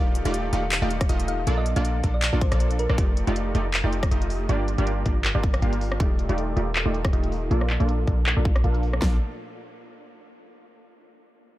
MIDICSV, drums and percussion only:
0, 0, Header, 1, 2, 480
1, 0, Start_track
1, 0, Key_signature, -2, "major"
1, 0, Tempo, 377358
1, 1872, Time_signature, 4, 2, 24, 8
1, 14735, End_track
2, 0, Start_track
2, 0, Title_t, "Drums"
2, 191, Note_on_c, 9, 42, 59
2, 318, Note_off_c, 9, 42, 0
2, 322, Note_on_c, 9, 42, 64
2, 431, Note_off_c, 9, 42, 0
2, 431, Note_on_c, 9, 42, 75
2, 559, Note_off_c, 9, 42, 0
2, 671, Note_on_c, 9, 42, 63
2, 799, Note_off_c, 9, 42, 0
2, 911, Note_on_c, 9, 39, 123
2, 911, Note_on_c, 9, 42, 73
2, 1038, Note_off_c, 9, 39, 0
2, 1038, Note_off_c, 9, 42, 0
2, 1151, Note_on_c, 9, 42, 64
2, 1279, Note_off_c, 9, 42, 0
2, 1282, Note_on_c, 9, 37, 78
2, 1282, Note_on_c, 9, 42, 64
2, 1283, Note_on_c, 9, 36, 108
2, 1390, Note_off_c, 9, 42, 0
2, 1390, Note_on_c, 9, 42, 78
2, 1409, Note_off_c, 9, 37, 0
2, 1410, Note_off_c, 9, 36, 0
2, 1518, Note_off_c, 9, 42, 0
2, 1521, Note_on_c, 9, 42, 61
2, 1630, Note_off_c, 9, 42, 0
2, 1630, Note_on_c, 9, 42, 63
2, 1757, Note_off_c, 9, 42, 0
2, 1869, Note_on_c, 9, 42, 74
2, 1996, Note_off_c, 9, 42, 0
2, 2109, Note_on_c, 9, 42, 59
2, 2236, Note_off_c, 9, 42, 0
2, 2241, Note_on_c, 9, 42, 64
2, 2350, Note_off_c, 9, 42, 0
2, 2350, Note_on_c, 9, 42, 72
2, 2477, Note_off_c, 9, 42, 0
2, 2589, Note_on_c, 9, 42, 60
2, 2591, Note_on_c, 9, 36, 59
2, 2716, Note_off_c, 9, 42, 0
2, 2718, Note_off_c, 9, 36, 0
2, 2828, Note_on_c, 9, 39, 121
2, 2828, Note_on_c, 9, 42, 76
2, 2955, Note_off_c, 9, 39, 0
2, 2955, Note_off_c, 9, 42, 0
2, 3070, Note_on_c, 9, 42, 62
2, 3071, Note_on_c, 9, 36, 111
2, 3197, Note_off_c, 9, 42, 0
2, 3199, Note_off_c, 9, 36, 0
2, 3202, Note_on_c, 9, 37, 83
2, 3202, Note_on_c, 9, 42, 62
2, 3310, Note_off_c, 9, 42, 0
2, 3310, Note_on_c, 9, 42, 72
2, 3329, Note_off_c, 9, 37, 0
2, 3437, Note_off_c, 9, 42, 0
2, 3442, Note_on_c, 9, 42, 60
2, 3551, Note_off_c, 9, 42, 0
2, 3551, Note_on_c, 9, 42, 61
2, 3678, Note_off_c, 9, 42, 0
2, 3683, Note_on_c, 9, 37, 77
2, 3791, Note_on_c, 9, 42, 76
2, 3792, Note_on_c, 9, 36, 115
2, 3810, Note_off_c, 9, 37, 0
2, 3918, Note_off_c, 9, 42, 0
2, 3919, Note_off_c, 9, 36, 0
2, 4032, Note_on_c, 9, 42, 60
2, 4159, Note_off_c, 9, 42, 0
2, 4164, Note_on_c, 9, 42, 64
2, 4274, Note_off_c, 9, 42, 0
2, 4274, Note_on_c, 9, 42, 72
2, 4401, Note_off_c, 9, 42, 0
2, 4514, Note_on_c, 9, 42, 62
2, 4641, Note_off_c, 9, 42, 0
2, 4753, Note_on_c, 9, 39, 113
2, 4753, Note_on_c, 9, 42, 77
2, 4880, Note_off_c, 9, 39, 0
2, 4880, Note_off_c, 9, 42, 0
2, 4993, Note_on_c, 9, 42, 62
2, 5120, Note_off_c, 9, 42, 0
2, 5124, Note_on_c, 9, 36, 101
2, 5125, Note_on_c, 9, 37, 82
2, 5125, Note_on_c, 9, 42, 64
2, 5234, Note_off_c, 9, 42, 0
2, 5234, Note_on_c, 9, 42, 76
2, 5251, Note_off_c, 9, 36, 0
2, 5252, Note_off_c, 9, 37, 0
2, 5361, Note_off_c, 9, 42, 0
2, 5363, Note_on_c, 9, 42, 61
2, 5472, Note_on_c, 9, 46, 90
2, 5490, Note_off_c, 9, 42, 0
2, 5599, Note_off_c, 9, 46, 0
2, 5713, Note_on_c, 9, 42, 77
2, 5840, Note_off_c, 9, 42, 0
2, 5953, Note_on_c, 9, 42, 62
2, 6080, Note_off_c, 9, 42, 0
2, 6084, Note_on_c, 9, 42, 66
2, 6192, Note_off_c, 9, 42, 0
2, 6192, Note_on_c, 9, 42, 77
2, 6319, Note_off_c, 9, 42, 0
2, 6431, Note_on_c, 9, 42, 62
2, 6433, Note_on_c, 9, 36, 58
2, 6558, Note_off_c, 9, 42, 0
2, 6560, Note_off_c, 9, 36, 0
2, 6672, Note_on_c, 9, 39, 112
2, 6672, Note_on_c, 9, 42, 75
2, 6799, Note_off_c, 9, 39, 0
2, 6799, Note_off_c, 9, 42, 0
2, 6912, Note_on_c, 9, 42, 63
2, 6913, Note_on_c, 9, 36, 99
2, 7039, Note_off_c, 9, 42, 0
2, 7041, Note_off_c, 9, 36, 0
2, 7044, Note_on_c, 9, 37, 85
2, 7044, Note_on_c, 9, 42, 67
2, 7153, Note_off_c, 9, 42, 0
2, 7153, Note_on_c, 9, 42, 74
2, 7171, Note_off_c, 9, 37, 0
2, 7280, Note_off_c, 9, 42, 0
2, 7285, Note_on_c, 9, 42, 63
2, 7394, Note_on_c, 9, 46, 92
2, 7412, Note_off_c, 9, 42, 0
2, 7521, Note_off_c, 9, 46, 0
2, 7525, Note_on_c, 9, 37, 83
2, 7633, Note_on_c, 9, 36, 106
2, 7634, Note_on_c, 9, 42, 83
2, 7652, Note_off_c, 9, 37, 0
2, 7760, Note_off_c, 9, 36, 0
2, 7761, Note_off_c, 9, 42, 0
2, 7873, Note_on_c, 9, 42, 65
2, 8000, Note_off_c, 9, 42, 0
2, 8004, Note_on_c, 9, 42, 72
2, 8114, Note_off_c, 9, 42, 0
2, 8114, Note_on_c, 9, 42, 76
2, 8241, Note_off_c, 9, 42, 0
2, 8353, Note_on_c, 9, 42, 65
2, 8480, Note_off_c, 9, 42, 0
2, 8593, Note_on_c, 9, 39, 115
2, 8593, Note_on_c, 9, 42, 76
2, 8720, Note_off_c, 9, 39, 0
2, 8720, Note_off_c, 9, 42, 0
2, 8833, Note_on_c, 9, 42, 66
2, 8960, Note_off_c, 9, 42, 0
2, 8963, Note_on_c, 9, 36, 104
2, 8964, Note_on_c, 9, 37, 80
2, 8964, Note_on_c, 9, 42, 72
2, 9072, Note_off_c, 9, 42, 0
2, 9072, Note_on_c, 9, 42, 83
2, 9090, Note_off_c, 9, 36, 0
2, 9092, Note_off_c, 9, 37, 0
2, 9199, Note_off_c, 9, 42, 0
2, 9203, Note_on_c, 9, 42, 66
2, 9313, Note_on_c, 9, 46, 101
2, 9330, Note_off_c, 9, 42, 0
2, 9440, Note_off_c, 9, 46, 0
2, 9552, Note_on_c, 9, 42, 85
2, 9679, Note_off_c, 9, 42, 0
2, 9683, Note_on_c, 9, 37, 63
2, 9792, Note_on_c, 9, 39, 59
2, 9792, Note_on_c, 9, 42, 64
2, 9811, Note_off_c, 9, 37, 0
2, 9919, Note_off_c, 9, 39, 0
2, 9919, Note_off_c, 9, 42, 0
2, 9924, Note_on_c, 9, 42, 71
2, 10032, Note_off_c, 9, 42, 0
2, 10032, Note_on_c, 9, 42, 78
2, 10159, Note_off_c, 9, 42, 0
2, 10271, Note_on_c, 9, 36, 59
2, 10272, Note_on_c, 9, 42, 65
2, 10399, Note_off_c, 9, 36, 0
2, 10399, Note_off_c, 9, 42, 0
2, 10512, Note_on_c, 9, 39, 115
2, 10512, Note_on_c, 9, 42, 80
2, 10639, Note_off_c, 9, 39, 0
2, 10639, Note_off_c, 9, 42, 0
2, 10752, Note_on_c, 9, 36, 102
2, 10753, Note_on_c, 9, 42, 68
2, 10879, Note_off_c, 9, 36, 0
2, 10880, Note_off_c, 9, 42, 0
2, 10883, Note_on_c, 9, 37, 80
2, 10883, Note_on_c, 9, 42, 71
2, 10992, Note_off_c, 9, 42, 0
2, 10992, Note_on_c, 9, 42, 82
2, 11010, Note_off_c, 9, 37, 0
2, 11119, Note_off_c, 9, 42, 0
2, 11123, Note_on_c, 9, 42, 66
2, 11232, Note_on_c, 9, 46, 95
2, 11250, Note_off_c, 9, 42, 0
2, 11359, Note_off_c, 9, 46, 0
2, 11364, Note_on_c, 9, 37, 76
2, 11472, Note_on_c, 9, 36, 101
2, 11472, Note_on_c, 9, 38, 108
2, 11491, Note_off_c, 9, 37, 0
2, 11599, Note_off_c, 9, 36, 0
2, 11599, Note_off_c, 9, 38, 0
2, 14735, End_track
0, 0, End_of_file